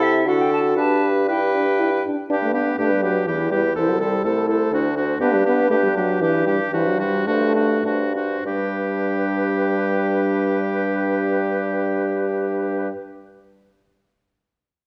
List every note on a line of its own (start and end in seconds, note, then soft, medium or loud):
0.00 0.27 C3 medium
0.00 0.22 E4 medium
0.00 0.25 E4 medium
0.00 0.22 A4 medium
0.00 0.29 E5 medium
0.26 0.76 D3 medium
0.26 0.78 F#4 medium
0.26 0.79 F#4 medium
0.26 0.76 A4 medium
0.26 0.42 F#5 medium
0.41 0.52 G5 medium
0.53 0.59 A5 medium
0.76 2.01 G2 medium
0.76 1.23 D4 medium
0.76 1.28 G4 soft
0.76 1.27 B4 medium
0.76 1.06 A5 medium
1.28 1.39 E4 medium
1.28 2.03 G4 medium
1.28 2.03 B4 medium
1.28 2.04 G5 medium
1.54 1.65 D4 medium
1.79 1.90 E4 medium
2.05 2.16 D4 medium
2.29 2.73 G2 medium
2.29 2.53 D4 soft
2.29 2.35 D4 medium
2.29 2.53 G4 soft
2.29 2.53 B4 soft
2.42 2.55 A3 medium
2.53 2.78 B3 soft
2.53 2.78 D4 soft
2.53 2.78 G4 soft
2.53 2.78 B4 soft
2.78 3.21 G2 medium
2.78 2.93 A3 medium
2.78 3.03 D4 soft
2.78 3.02 G4 soft
2.78 3.03 B4 soft
2.91 3.04 G3 soft
3.03 3.28 F#3 medium
3.03 3.26 D4 soft
3.03 3.27 G4 soft
3.03 3.27 B4 soft
3.27 3.70 E2 soft
3.27 3.50 E3 medium
3.27 3.51 E4 soft
3.27 3.51 G4 soft
3.27 3.50 B4 soft
3.51 3.62 G3 medium
3.51 3.76 E4 soft
3.51 3.75 G4 soft
3.51 3.75 B4 soft
3.75 4.19 C2 medium
3.75 3.90 E3 medium
3.75 4.00 E4 soft
3.75 3.99 A4 soft
3.75 3.99 C5 soft
3.89 4.00 F#3 soft
4.00 4.26 G3 medium
4.00 4.24 E4 soft
4.00 4.24 A4 soft
4.00 4.24 C5 soft
4.24 4.66 C2 medium
4.24 4.97 A3 medium
4.24 4.48 E4 soft
4.24 4.48 A4 soft
4.24 4.48 C5 soft
4.48 4.72 E4 soft
4.48 4.72 A4 soft
4.48 4.72 C5 soft
4.72 5.15 D2 soft
4.72 4.96 D4 soft
4.72 4.96 F#4 soft
4.72 4.96 C5 soft
4.96 5.20 D4 soft
4.96 5.20 F#4 soft
4.96 5.19 C5 soft
5.20 5.64 G2 medium
5.20 5.36 B3 medium
5.20 5.45 D4 soft
5.20 5.45 G4 soft
5.20 5.44 B4 soft
5.34 5.44 G3 medium
5.45 5.69 B3 medium
5.45 5.70 D4 soft
5.45 5.70 G4 soft
5.45 5.70 B4 soft
5.70 6.15 G2 medium
5.70 5.76 A3 medium
5.70 5.95 D4 soft
5.70 5.95 G4 soft
5.70 5.95 B4 soft
5.83 5.88 G3 medium
5.95 6.23 F#3 medium
5.95 6.20 D4 soft
5.95 6.21 G4 soft
5.95 6.21 B4 soft
6.21 6.67 G2 medium
6.21 6.46 E3 medium
6.21 6.45 D4 soft
6.21 6.46 G4 soft
6.21 6.46 B4 soft
6.46 6.59 G3 medium
6.46 6.71 D4 soft
6.46 6.72 G4 soft
6.46 6.72 B4 soft
6.72 7.20 G2 medium
6.72 6.89 E3 medium
6.72 6.99 D4 soft
6.72 6.99 F#4 soft
6.72 6.99 C5 soft
6.88 7.01 F#3 medium
6.99 7.28 G3 medium
6.99 7.26 D4 soft
6.99 7.27 F#4 soft
6.99 7.27 C5 soft
7.27 7.78 G2 medium
7.27 8.14 A3 medium
7.27 7.55 D4 soft
7.27 7.55 F#4 soft
7.27 7.55 C5 soft
7.55 7.84 D4 soft
7.55 7.84 F#4 soft
7.55 7.84 C5 soft
7.84 8.38 G2 soft
7.84 8.14 D4 soft
7.84 8.14 F#4 soft
7.84 8.14 C5 soft
8.15 8.45 D4 soft
8.15 8.45 F#4 soft
8.15 8.45 C5 soft
8.45 12.89 G2 soft
8.45 12.90 G3 soft
8.45 12.90 D4 soft
8.45 12.90 G4 soft
8.45 12.90 B4 soft